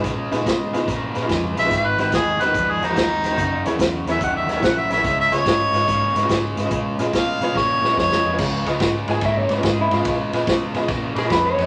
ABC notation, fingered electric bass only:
X:1
M:4/4
L:1/8
Q:"Swing" 1/4=144
K:Dbmix
V:1 name="Fingered electric bass" clef=bass
B,, B,, C, C, B,, B,, F,, B,,, | A,,, A,,, E,, E,, E,, E,, E,, E,, | G,,, E,, _F,, F,, E,, E,, B,,, B,,, | D,, D,, A,, A,, A,, A,, A,, A,, |
B,, B,, C, C, B,, B,, F,, F,, | D,, D,, A,, A,, A,, A,, A,, A,, | z B,, C, C, B,, B,, F,, F,, |]